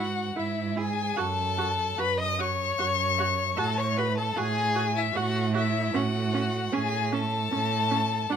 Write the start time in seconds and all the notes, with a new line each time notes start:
Already playing: G#2 F#4 F#5
0.35 G#2 E4 E5
0.76 E4 G#4 G#5
1.16 F#2 F#4 A4 A5
1.58 F#4
1.98 F#2 F#4 B4 B5
2.18 D#5
2.22 D#6
2.39 F#4 C#5 C#6
2.78 F#2 F#4
3.18 F#4
3.57 A2 F#4 A4 A5
3.78 C#5 C#6
3.97 F#4 B4 B5
4.17 A4 A5
4.36 A2 F#4 G#4 G#5
4.75 F#4
4.96 E4 E5
5.15 A2 F#4 F#5
5.54 E4 F#4 E5
5.94 A2 C#4 F#4 F#5
6.33 C#4
6.72 A2 C#4 G#4 G#5
7.12 C#4 A4 A5
7.52 A2 C#4
7.90 C#4
8.30 G#2 D4 F#4 F#5